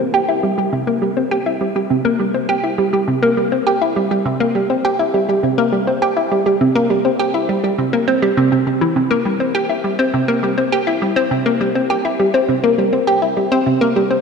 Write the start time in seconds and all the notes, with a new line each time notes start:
0.14 G4
0.29 E4
0.43 G3
0.58 G3
0.73 C3
0.87 A#3
1.02 G3
1.17 C4
1.31 G4
1.46 E4
1.61 G3
1.76 G3
1.90 C3
2.05 A#3
2.20 G3
2.34 C4
2.49 G4
2.64 E4
2.78 G3
2.93 G3
3.08 C3
3.23 A#3
3.37 G3
3.52 C4
3.67 G4
3.82 E4
3.96 G3
4.11 G3
4.26 C3
4.40 A#3
4.55 G3
4.70 C4
4.85 G4
4.99 E4
5.14 G3
5.29 G3
5.43 C3
5.58 A#3
5.72 G3
5.87 C4
6.02 G4
6.17 E4
6.31 G3
6.46 G3
6.61 C3
6.75 A#3
6.90 G3
7.05 C4
7.19 G4
7.34 E4
7.49 G3
7.64 G3
7.78 C3
7.93 A#3
8.08 C4
8.22 G3
8.37 C3
8.52 C3
8.67 C3
8.81 E3
8.96 C3
9.11 A#3
9.25 G3
9.40 C4
9.55 G4
9.69 E4
9.84 G3
9.99 C4
10.14 C3
10.28 A#3
10.43 G3
10.58 C4
10.72 G4
10.87 E4
11.02 G3
11.16 C4
11.31 C3
11.46 A#3
11.61 G3
11.75 C4
11.90 G4
12.05 E4
12.20 G3
12.34 C4
12.49 C3
12.64 A#3
12.78 G3
12.93 C4
13.07 G4
13.22 E4
13.37 G3
13.52 C4
13.66 C3
13.81 A#3
13.96 G3
14.11 C4